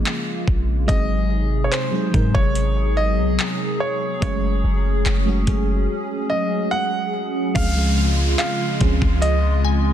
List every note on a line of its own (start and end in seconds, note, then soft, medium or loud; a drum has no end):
0.00 0.85 C#3 medium
0.00 0.91 F3 medium
0.00 0.85 G#3 medium
0.00 0.88 G#3 medium
0.00 0.86 A#3 medium
0.00 0.91 A#3 medium
0.00 0.89 C4 medium
0.00 0.91 C#4 medium
0.00 0.90 F4 medium
0.00 0.91 G#4 medium
0.06 clap loud
0.06 closed hi-hat medium
0.48 0.87 A#1 loud
0.48 kick medium
0.87 1.69 G#1 loud
0.87 4.19 C3 medium
0.87 1.64 F#3 medium
0.87 7.51 F#3 medium
0.87 1.65 G#3 medium
0.87 1.65 C4 medium
0.87 1.66 D#4 medium
0.87 7.51 G#4 medium
0.87 1.61 D#5 loud
0.87 kick loud
0.87 closed hi-hat medium
0.91 1.67 G#4 medium
1.64 1.72 C#5 medium
1.72 2.36 C5 medium
1.72 clap loud
1.72 closed hi-hat medium
1.91 2.07 F#3 medium
1.91 2.08 G#3 medium
1.91 2.08 C4 medium
1.91 2.09 D#4 medium
1.95 2.09 G#4 medium
2.11 2.34 G#2 loud
2.11 3.35 F#3 medium
2.11 3.36 G#3 medium
2.11 2.20 B3 medium
2.11 3.37 D#4 medium
2.11 kick medium
2.11 closed hi-hat soft
2.16 3.37 A#4 medium
2.20 3.40 C3 medium
2.34 3.19 G#1 loud
2.34 2.99 C#5 medium
2.34 kick medium
2.55 closed hi-hat medium
2.97 3.83 D#5 loud
3.18 3.38 C2 medium
3.39 clap loud
3.39 closed hi-hat medium
3.80 4.19 C#5 medium
4.20 4.62 F#1 loud
4.20 4.98 F#3 medium
4.20 4.98 G#3 medium
4.20 4.99 A3 medium
4.20 7.52 C#4 medium
4.20 5.00 C#4 medium
4.20 6.68 C#5 medium
4.20 kick loud
4.20 closed hi-hat medium
4.24 5.00 G#4 medium
4.64 5.04 F#1 loud
5.06 5.46 F#1 loud
5.06 clap loud
5.06 closed hi-hat medium
5.25 5.41 F#3 medium
5.25 5.42 G#3 medium
5.25 5.42 A3 medium
5.25 5.42 C#4 medium
5.25 5.43 F#4 medium
5.45 5.87 F#1 medium
5.45 6.69 F#3 medium
5.45 6.70 G#3 medium
5.45 6.70 A3 medium
5.45 6.71 C#4 medium
5.45 6.71 G#4 medium
5.45 kick medium
5.45 closed hi-hat soft
6.30 6.73 D#5 medium
6.71 7.58 F#5 loud
7.54 8.36 C#2 loud
7.54 9.93 C#3 medium
7.54 7.70 F3 medium
7.54 7.71 G#3 medium
7.54 9.93 G#3 medium
7.54 7.71 C4 medium
7.54 7.72 C#4 medium
7.54 9.93 F4 loud
7.54 7.72 G#4 medium
7.54 8.37 F5 loud
7.54 kick loud
7.54 closed hi-hat medium
7.54 crash loud
7.54 downlifter medium
7.75 8.52 F3 medium
7.75 8.53 G#3 medium
7.75 8.53 C4 medium
7.75 8.54 C#4 medium
7.75 8.54 G#4 medium
7.98 9.93 F5 medium
8.38 9.24 F5 medium
8.38 clap loud
8.38 closed hi-hat medium
8.80 9.01 C#2 loud
8.80 9.93 F3 medium
8.80 9.93 G#3 medium
8.80 9.93 C4 medium
8.80 9.93 C#4 medium
8.80 9.93 G#4 medium
8.80 kick medium
8.80 closed hi-hat medium
9.02 9.93 C#2 loud
9.02 kick loud
9.22 9.93 D#5 loud
9.22 closed hi-hat medium
9.65 9.93 G#5 medium